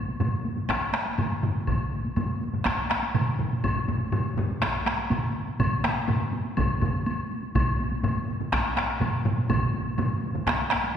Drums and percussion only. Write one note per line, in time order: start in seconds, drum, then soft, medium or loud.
0.08 taiko high soft
0.20 taiko low-mid medium
0.20 taiko mid medium
0.20 taiko high medium
0.20 high woodblock soft
0.45 taiko high medium
0.56 taiko low-mid soft
0.56 taiko mid medium
0.56 taiko high soft
0.69 taiko rim medium
0.69 taiko medium
0.69 taiko high medium
0.69 high woodblock medium
0.93 taiko rim medium
0.93 taiko high medium
0.93 high woodblock soft
1.06 taiko high soft
1.18 taiko low-mid medium
1.18 taiko mid medium
1.18 taiko high medium
1.18 high woodblock soft
1.43 taiko low-mid medium
1.43 taiko mid medium
1.55 taiko high soft
1.67 taiko medium
1.67 taiko low-mid medium
1.67 taiko mid medium
1.67 taiko high medium
1.67 high woodblock soft
1.92 taiko high soft
2.04 taiko high medium
2.16 taiko low-mid medium
2.16 taiko mid medium
2.16 taiko high medium
2.16 high woodblock soft
2.41 taiko high soft
2.53 taiko low-mid medium
2.53 taiko mid medium
2.53 taiko high soft
2.65 taiko rim medium
2.65 taiko medium
2.65 taiko high medium
2.65 high woodblock medium
2.90 taiko rim medium
2.90 taiko high medium
2.90 high woodblock soft
3.03 taiko high soft
3.14 taiko low-mid medium
3.14 taiko mid medium
3.14 taiko high medium
3.14 high woodblock soft
3.39 taiko low-mid medium
3.39 taiko mid medium
3.52 taiko high soft
3.64 taiko medium
3.64 taiko low-mid medium
3.64 taiko mid medium
3.64 taiko high medium
3.64 high woodblock medium
3.76 taiko low-mid medium
3.76 taiko mid medium
3.88 taiko low-mid medium
3.88 taiko mid medium
3.88 taiko high soft
4.01 taiko high soft
4.12 taiko low-mid medium
4.12 taiko mid medium
4.12 taiko high medium
4.12 high woodblock soft
4.37 taiko low-mid loud
4.37 taiko mid medium
4.37 taiko high soft
4.50 taiko high medium
4.62 taiko rim medium
4.62 taiko loud
4.62 taiko high medium
4.62 high woodblock medium
4.86 taiko rim medium
4.86 taiko high medium
4.86 high woodblock soft
4.98 taiko high medium
5.10 taiko low-mid medium
5.10 taiko mid medium
5.10 taiko high medium
5.10 high woodblock soft
5.47 taiko high medium
5.59 taiko medium
5.59 taiko low-mid medium
5.59 taiko mid medium
5.59 taiko high medium
5.59 high woodblock medium
5.84 taiko rim medium
5.84 taiko high medium
5.96 taiko high medium
6.08 taiko low-mid loud
6.08 taiko mid medium
6.08 taiko high medium
6.08 high woodblock soft
6.33 taiko high medium
6.44 taiko high medium
6.57 taiko loud
6.57 taiko low-mid loud
6.57 taiko mid loud
6.57 taiko high medium
6.57 high woodblock medium
6.81 taiko low-mid medium
6.81 taiko mid medium
6.81 taiko high medium
6.81 high woodblock soft
6.94 taiko high medium
7.06 taiko high medium
7.06 high woodblock soft
7.31 taiko high medium
7.43 taiko high soft
7.55 taiko medium
7.55 taiko low-mid medium
7.55 taiko mid loud
7.55 taiko high medium
7.55 high woodblock medium
7.79 taiko high medium
7.91 taiko high medium
8.03 taiko low-mid medium
8.03 taiko mid medium
8.03 taiko high medium
8.03 high woodblock soft
8.28 taiko high medium
8.40 taiko low-mid medium
8.40 taiko mid medium
8.40 taiko high medium
8.52 taiko rim medium
8.52 taiko loud
8.52 taiko high medium
8.52 high woodblock medium
8.77 taiko rim medium
8.77 taiko high medium
8.77 high woodblock soft
9.01 taiko low-mid medium
9.01 taiko mid medium
9.01 taiko high medium
9.01 high woodblock soft
9.25 taiko low-mid loud
9.25 taiko mid medium
9.38 taiko high medium
9.49 taiko medium
9.49 taiko low-mid loud
9.49 taiko mid loud
9.49 taiko high medium
9.49 high woodblock medium
9.74 taiko high medium
9.86 taiko high medium
9.98 taiko low-mid loud
9.98 taiko mid medium
9.98 taiko high medium
9.98 high woodblock soft
10.23 taiko high medium
10.34 taiko low-mid medium
10.34 taiko mid medium
10.34 taiko high soft
10.47 taiko rim medium
10.47 taiko loud
10.47 taiko high medium
10.47 high woodblock medium
10.71 taiko rim medium
10.71 taiko high medium
10.71 high woodblock soft
10.84 taiko high soft